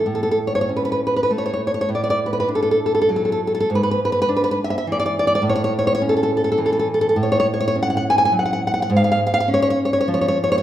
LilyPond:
\new Staff \with { instrumentName = "Nylon-string guitar" } { \time 3/4 \key a \major \tempo 4 = 102 << { r32 a'32 a'32 a'32 r32 cis''32 cis''32 cis''32 r32 b'32 b'32 b'32 r32 b'32 b'32 b'32 r32 cis''32 cis''32 cis''32 r32 cis''32 cis''32 cis''32 | r32 d''32 d''32 d''32 r32 b'32 b'32 b'32 r32 a'32 a'32 a'32 r32 a'32 a'32 a'32 r32 a'32 a'32 a'32 r32 a'32 a'32 a'32 | r32 b'32 b'32 b'32 r32 b'32 b'32 b'32 r32 b'32 b'32 b'32 r32 e''32 e''32 e''32 r32 d''32 d''32 d''32 r32 d''32 d''32 d''32 | r32 cis''32 cis''32 cis''32 r32 cis''32 cis''32 cis''32 r32 a'32 a'32 a'32 r32 a'32 a'32 a'32 r32 a'32 a'32 a'32 r32 a'32 a'32 a'32 |
\key fis \minor r32 cis''32 cis''32 cis''32 r32 cis''32 cis''32 cis''32 r32 fis''32 fis''32 fis''32 r32 gis''32 gis''32 gis''32 r32 fis''32 fis''32 fis''32 r32 fis''32 fis''32 fis''32 | r32 eis''32 eis''32 eis''32 r32 eis''32 eis''32 eis''32 r32 cis''32 cis''32 cis''32 r32 cis''32 cis''32 cis''32 r32 cis''32 cis''32 cis''32 r32 cis''32 cis''32 cis''32 | } \\ { a,4 cis'4 a4 | a,4 d'4 fis4 | gis,4 d'4 e4 | a,4 cis'4 e4 |
a,4 cis'4 fis4 | gis,4 cis'4 eis4 | } >> }